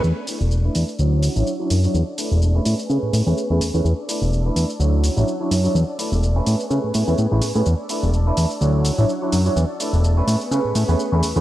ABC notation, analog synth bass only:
X:1
M:4/4
L:1/16
Q:"Swing 16ths" 1/4=126
K:Emix
V:1 name="Analog synth bass" clef=bass
E,, z2 E,,,2 z E,, z D,,2 z A,,, z2 F,, z | E,, z2 E,,,2 z A,, z C, A,, A,, E,, z E,, E,, E,, | E,, z2 E,,,2 z E,, z D,,2 z A,,, z2 F,, z | E,, z2 E,,,2 z A,, z C, A,, A,, E,, A,, A,,, A,, A,, |
E,, z2 E,,,2 z E,, z D,,2 z A,,, z2 F,, z | E,, z2 E,,,2 z A,, z C, A,, A,, E,, z E,, E,, E,, |]